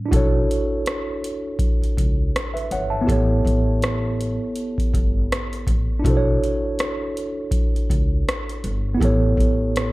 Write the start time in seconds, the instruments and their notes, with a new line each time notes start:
Already playing: tine electric piano A2 G3 C#4
0.06 tine electric piano D4 E4
0.11 upright bass B1, tine electric piano F#4 A4, kick, closed hi-hat
0.16 tine electric piano C#5
0.51 closed hi-hat
0.86 cross-stick, closed hi-hat
1.24 closed hi-hat
1.59 kick, closed hi-hat
1.82 muted upright bass stroke, closed hi-hat
1.97 upright bass C#2, kick, closed hi-hat
2.36 cross-stick, closed hi-hat
2.54 tine electric piano B4 E5, closed hi-hat
2.71 upright bass G1, tine electric piano C#5 F#5, closed hi-hat
2.90 tine electric piano E5 A5
3.01 tine electric piano B3 E4
3.07 upright bass A1, tine electric piano G4 A4, kick, closed hi-hat
3.12 tine electric piano C#5
3.45 upright bass A1, kick, closed hi-hat
3.82 cross-stick, closed hi-hat
4.21 closed hi-hat
4.56 closed hi-hat
4.78 kick, closed hi-hat
4.94 upright bass G1, kick, closed hi-hat
5.32 cross-stick, closed hi-hat
5.53 closed hi-hat
5.67 upright bass A1, kick, closed hi-hat
5.99 tine electric piano D4 E4
6.04 upright bass B1, tine electric piano F#4 A4, kick, closed hi-hat
6.10 tine electric piano C5
6.17 tine electric piano C#5
6.44 closed hi-hat
6.79 cross-stick, closed hi-hat
7.17 closed hi-hat
7.51 kick, closed hi-hat
7.75 muted upright bass stroke, closed hi-hat
7.90 upright bass C#2, kick, closed hi-hat
8.29 cross-stick, closed hi-hat
8.49 closed hi-hat
8.64 upright bass G1, closed hi-hat
8.95 tine electric piano B3 E4
9.00 upright bass A1, tine electric piano G4 A4, kick, closed hi-hat
9.05 tine electric piano C#5
9.37 upright bass A1, kick, closed hi-hat
9.76 cross-stick, closed hi-hat